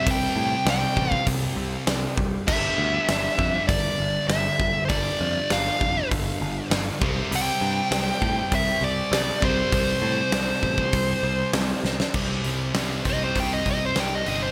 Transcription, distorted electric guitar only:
Already playing: C3 G3 C4
2.47 G2 D3 G3
4.90 G2 D3 G3
7.01 C3 G3 C4
9.41 C3 G3 C4
12.15 C3 G3 C4
12.74 C3 G3 C4
13.05 C3 G3 C4
13.37 C3 G3 C4
13.97 C3 G3 C4
14.28 C3 G3 C4

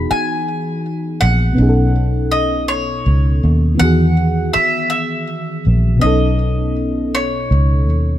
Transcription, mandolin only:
Already playing: B5
0.11 G#5
1.21 F#5
2.31 D#5
2.68 C#5
3.80 F#5
4.53 E5
4.90 E5
6.01 D#5
7.15 C#5

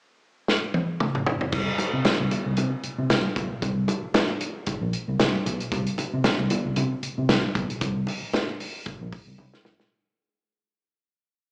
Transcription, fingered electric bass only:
1.53 C2
1.79 muted fingered electric bass stroke
1.93 C3
2.06 muted fingered electric bass stroke
2.20 C2
2.46 C2
2.58 C3
2.84 muted fingered electric bass stroke
2.98 C3
3.10 C2
3.36 B1
3.62 C2
4.02 muted fingered electric bass stroke
4.67 muted fingered electric bass stroke
4.81 A#1
5.08 C2
5.20 C2
5.46 B1
5.72 C2
5.99 muted fingered electric bass stroke
6.14 C3
6.25 muted fingered electric bass stroke
6.40 C2
6.65 C2
6.77 C3
7.03 muted fingered electric bass stroke
7.18 C3
7.29 C2
7.56 B1
7.81 C2
8.22 muted fingered electric bass stroke
8.87 muted fingered electric bass stroke
9.01 A#1
9.27 C2
9.38 C2
9.65 B1

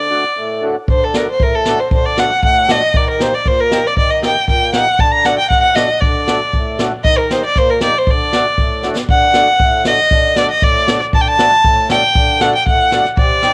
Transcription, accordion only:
Already playing: D3
0.10 A3 D4 F#4
0.37 A2
0.63 A3 D4 F#4
0.89 D3
1.14 A3 D4 F#4
1.40 A2
1.67 A3 D4 F#4
1.91 D3
2.18 A3 D4 F#4
2.43 A2
2.68 A3 D4 F#4
2.94 D#3
3.20 A#3 D#4 G4
3.45 A#2
3.71 A#3 D#4 G4
3.97 D#3
4.22 A#3 D#4 G4
4.48 A#2
4.74 A#3 D#4 G4
5.00 D3
5.26 A3 D4 F#4
5.51 A2
5.76 A3 D4 F#4
6.02 D3
6.28 A3 D4 F#4
6.54 A2
6.79 A3 D4 F#4
7.05 D#3
7.31 A#3 D#4 G4
7.56 A#2
7.82 A#3 D#4 G4
8.08 D3
8.33 A3 D4 F#4
8.59 A2
8.84 A3 D4 F#4
9.10 D3
9.35 A3 D4 F#4
9.61 A2
9.86 A3 D4 F#4
10.12 D3
10.37 A3 D4 F#4
10.62 A2
10.88 A3 D4 F#4
11.13 D3
11.38 A3 D4 F#4
11.64 A2
11.90 A3 D4 F#4
12.16 D3
12.41 A3 D4 F#4
12.67 A2
12.92 A3 D4 F#4
13.18 C3
13.44 C4 D#4 G4

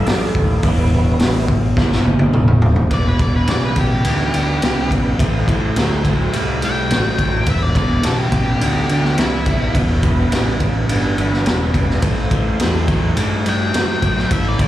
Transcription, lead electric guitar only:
2.93 D5
3.08 B4
3.22 D5
3.36 B4
3.49 D5
3.65 B4
3.79 G4
6.65 G5
7.50 E5
7.63 D5
7.77 D5
8.06 A4
8.19 G4
9.19 E4
13.49 G5
14.33 E5
14.48 D5
14.62 D5

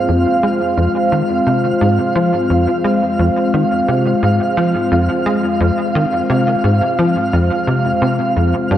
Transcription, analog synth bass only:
0.09 F2
0.43 G#3
0.77 F2
1.12 D#3
1.47 C3
1.81 G#2
2.16 F3
2.50 F2
2.84 G#3
3.19 F2
3.54 D#3
3.88 C3
4.23 G#2
4.57 F3
4.92 F2
5.26 G#3
5.61 F2
5.95 D#3
6.30 C3
6.64 G#2
6.99 F3
7.33 F2
7.67 C3
8.02 C3
8.36 F2
8.71 G2

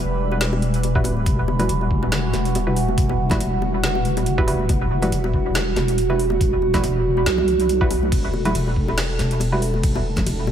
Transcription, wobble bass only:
Already playing: E1
0.87 D#1
1.13 D1
1.26 E1
1.69 E1
2.33 E1
2.98 E1
3.41 E1
4.69 E1
5.12 E1
5.76 E1
6.41 E1
6.84 E1
7.26 B1
8.12 E1
8.55 E1
9.19 E1
9.84 E1
10.26 E1

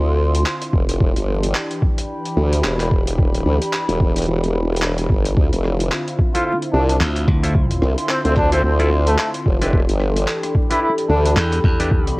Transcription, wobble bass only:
Already playing: D2
0.73 F1
1.00 E1
1.16 G1
2.37 D2
2.64 E1
2.91 E1
3.28 D#1
3.46 D2
3.89 E1
4.27 E1
5.10 G1
5.37 D2
5.52 F1
6.73 C2
7.82 C2
8.25 D2
8.63 D2
9.46 F1
9.73 E1
9.88 G1
11.09 D2

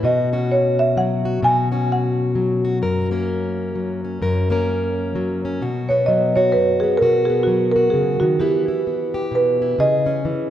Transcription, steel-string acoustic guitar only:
0.03 B2 F#4
0.33 C#4 F#4
0.97 F#3
1.25 F#4
1.43 B2 F#4
1.72 C#4 F#4
2.35 F#3
2.65 F#4
2.82 F#2 A#4
3.11 A#3 C#4 A#4
3.75 F#3
4.04 C#4
4.22 F#2 A#4
4.50 A#3 C#4 A#4
5.15 F#3
5.45 C#4
5.62 B2 F#4
5.90 B3
6.08 F#3
6.37 F#4
6.55 F#2
6.84 B3
7.01 B2 F#4
7.30 B3
7.47 F#3
7.76 F#4
7.93 C#3
8.21 D#3
8.40 E3 B3 E4
8.68 E4
8.87 B3
9.14 G4
9.31 B2
9.62 E4
9.79 C#3 G#4
10.06 C#4
10.25 E3

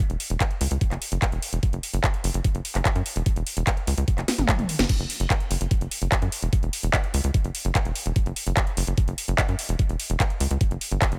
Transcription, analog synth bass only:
0.10 E1
0.30 E1
0.61 C#2
0.71 C#2
0.91 F#1
1.12 F#1
1.32 E1
1.53 E1
1.73 F#1
1.93 F#1
2.24 F#1
2.34 F#1
2.55 F#1
2.75 F#1
2.95 F#2
3.16 E1
3.36 E1
3.57 E1
3.87 C#2
3.98 C#2
4.18 F#1
4.38 G1
4.59 F#1
4.79 F#1
5.00 F#1
5.20 F#1
5.51 F#1
5.61 F#1
5.81 F#1
6.02 F#1
6.22 F#2
6.42 E1
6.63 E1
6.83 E1
7.14 C#2
7.24 C#2
7.45 F#1
7.65 F#1
7.85 E1
8.06 E1
8.26 F#1
8.47 F#1
8.77 F#1
8.87 F#1
9.08 F#1
9.28 F#1
9.49 F#2
9.69 E1
9.89 E1
10.10 E1
10.40 C#2
10.51 C#2
10.71 F#1
10.91 G1
11.12 F#1

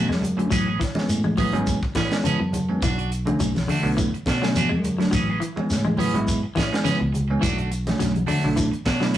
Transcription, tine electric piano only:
0.37 D3 F#3 A3 C#4
0.95 E3 G#3 B3 C#4
1.53 E3 G#3 B3 C#4
2.11 E3 G#3 B3 C#4
2.25 A5
2.69 E3 G#3 B3 C#4
3.25 D3 F#3 A3 C#4
3.83 D3 F#3 A3 B3
4.43 D3 F#3 A3 C#4
4.99 D3 F#3 A3 D4
5.56 E3 G#3 B3 C#4
6.15 E3 G#3 B3 E4
6.72 E3 G#3 B3 C#4
7.30 E3 G#3 B3 C#4
7.87 D3 F#3 A3 C#4
8.44 D3 F#3 A3 D4
9.01 D3 F#3 A3 E4

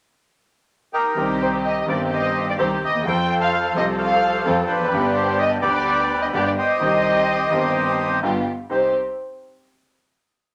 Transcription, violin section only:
1.41 C5
1.65 D#5
1.90 D5
2.14 D#5
2.50 D5
2.60 C5
2.84 D#5
3.07 G5
3.42 F5
3.76 D#5
4.01 F5
4.71 B4
5.17 C5
5.41 D#5
5.64 D5
6.22 D#5
6.36 D5
6.46 D5
6.59 D#5
8.73 C5

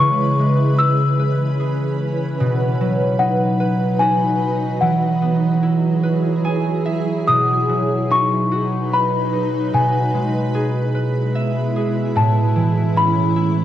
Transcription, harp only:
Already playing: B3 E4 G#4 B4
0.00 C#3
0.39 G#3
0.80 E4
1.19 B4
1.60 G#4
2.40 B2
2.81 F#3
3.19 D#4
3.60 B4
4.01 F#4
4.81 E3
5.22 B3
5.63 E4
6.03 B4
6.44 G#4 G#5
6.85 E5
7.28 B2
7.69 F#3
8.10 D#4
8.52 F#4
8.93 B4
9.33 D#4
9.73 B2
10.14 G#3
10.55 G#4
10.95 B4
11.35 E5
11.76 G#4
12.16 A2
12.56 E3
12.96 C#4
13.36 E4

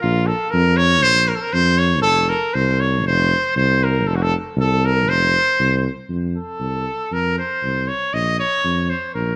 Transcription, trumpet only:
0.01 F4
0.26 A4
0.50 A#4
0.76 C#5
1.03 C5
1.28 A#4
1.35 A4
1.41 A#4
1.53 C5
1.78 C#5
2.02 A4
2.29 A#4
2.54 C5
2.80 C#5
3.06 C5
3.56 C5
3.84 A#4
4.07 A4
4.15 F#4
4.22 A4
4.60 A4
4.85 A#4
5.09 C5
6.36 A4
7.13 A#4
7.39 C5
7.88 C#5
8.13 D#5
8.40 C#5
8.89 C5
9.15 A#4

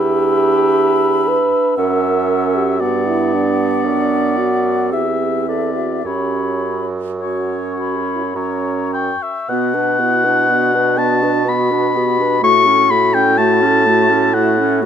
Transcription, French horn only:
Already playing: G4
1.28 B4
1.78 A#4
2.55 G4
2.80 F#4
3.06 E4
3.34 D4
4.38 F#4
4.92 G4
5.48 A4
5.75 F#4
6.04 G4
7.21 F#4
7.95 G4
8.04 F#4
8.16 E4
8.24 F#4
9.49 F#4
9.99 E4
10.48 D4
11.47 F#4
11.96 G4
12.44 F#4
14.37 E4

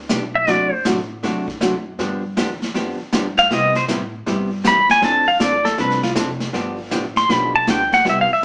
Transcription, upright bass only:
0.09 B1
0.47 F#1
0.85 A1
1.23 D2
1.61 F#2
1.99 G2
2.37 E2
2.74 F2
3.00 muted upright bass stroke
3.12 G2
3.50 C3
3.88 A2
4.26 G2
4.64 E2
5.02 F2
5.40 D2
5.78 C2
6.15 F1
6.53 G1
6.91 A1
7.29 B1
7.67 D2
8.05 C2

